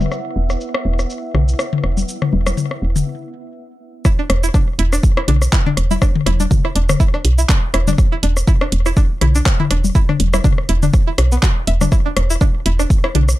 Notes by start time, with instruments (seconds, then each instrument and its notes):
Already playing: synth texture B3 E5, analog synth pad E4 B4 F#5 E6
0.01 high tom, low conga, cabasa
0.12 cross-stick, cabasa
0.36 fm bass E1
0.50 cross-stick, cabasa
0.61 cabasa
0.74 cross-stick
0.85 fm bass E1
0.99 cross-stick, cabasa
1.10 cabasa
1.34 fm bass B1, cross-stick, high tom
1.48 cabasa
1.59 cross-stick, cabasa
1.73 high tom
1.84 fm bass E1, cross-stick
1.97 low conga, cabasa
2.08 cabasa
2.22 cross-stick, high tom
2.33 fm bass E1, low conga
2.47 cross-stick, low conga, cabasa
2.57 high tom, cabasa
2.71 cross-stick
2.82 fm bass E1
2.96 high tom, cabasa
4.05 synth pluck E4, kick, cross-stick, cabasa
4.19 synth pluck D4
4.30 fm bass E1, cross-stick, closed hi-hat
4.43 synth pluck E4, cabasa
4.54 synth pluck D4, kick, cross-stick, cabasa
4.79 fm bass E1, synth pluck E4, closed hi-hat
4.93 synth pluck D4, cross-stick, cabasa
5.03 kick, cabasa
5.17 synth pluck E4, cross-stick
5.28 fm bass B1, synth pluck D4, closed hi-hat, high tom
5.42 cross-stick, cabasa
5.53 synth pluck E4, kick, clap, cabasa
5.66 synth pluck D4, high tom
5.77 fm bass E1, cross-stick, closed hi-hat
5.91 synth pluck E4, low conga, cabasa
6.02 synth pluck D4, kick, cross-stick, cabasa
6.16 high tom
6.26 fm bass E1, synth pluck E4, cross-stick, closed hi-hat, low conga
6.40 synth pluck D4, low conga, cabasa
6.51 kick, high tom, cabasa
6.65 synth pluck E4, cross-stick
6.75 fm bass E1, synth pluck D4, closed hi-hat
6.89 cross-stick, high tom, cabasa
7.00 synth pluck E4, kick, cabasa
7.14 synth pluck D4, cross-stick
7.25 fm bass B1, closed hi-hat
7.38 synth pluck E4, cabasa
7.49 synth pluck D4, kick, cross-stick, clap, cabasa
7.74 fm bass E1, synth pluck E4, cross-stick, closed hi-hat
7.88 synth pluck D4, high tom, low conga, cabasa
7.98 kick, cross-stick, cabasa
8.12 synth pluck E4
8.23 fm bass E1, synth pluck D4, closed hi-hat
8.37 cross-stick, cabasa
8.48 synth pluck E4, kick, cabasa
8.61 synth pluck D4, cross-stick
8.72 fm bass E1, closed hi-hat
8.86 synth pluck E4, cross-stick, cabasa
8.97 synth pluck D4, kick, cabasa
9.21 fm bass B1, synth pluck E4, cross-stick, closed hi-hat, high tom
9.35 synth pluck D4, cabasa
9.46 kick, cross-stick, clap, cabasa
9.60 synth pluck E4, high tom
9.71 fm bass E1, synth pluck D4, cross-stick, closed hi-hat
9.84 low conga, cabasa
9.95 synth pluck E4, kick, cabasa
10.09 synth pluck D4, cross-stick, high tom
10.20 fm bass E1, closed hi-hat, low conga
10.33 synth pluck E4, cross-stick, low conga, cabasa
10.44 synth pluck D4, kick, high tom, cabasa
10.58 cross-stick
10.69 fm bass E1, synth pluck E4, closed hi-hat
10.83 synth pluck D4, high tom, cabasa
10.94 kick, cross-stick, cabasa
11.07 synth pluck E4
11.18 fm bass B1, cross-stick, closed hi-hat
11.32 synth pluck B3, cabasa
11.43 synth pluck F#4, kick, cross-stick, clap, cabasa
11.67 fm bass E1, synth pluck E5, closed hi-hat
11.81 synth pluck D4, cross-stick, high tom, low conga, cabasa
11.92 synth pluck E4, kick, cross-stick, cabasa
12.06 synth pluck D4
12.17 fm bass E1, cross-stick, closed hi-hat
12.30 synth pluck E4, cabasa
12.41 synth pluck D4, kick, cross-stick, cabasa
12.66 fm bass E1, synth pluck E4, closed hi-hat
12.79 synth pluck D4, cross-stick, cabasa
12.90 kick, cabasa
13.04 synth pluck E4, cross-stick
13.15 fm bass B1, synth pluck D4, closed hi-hat, high tom
13.29 cross-stick, cabasa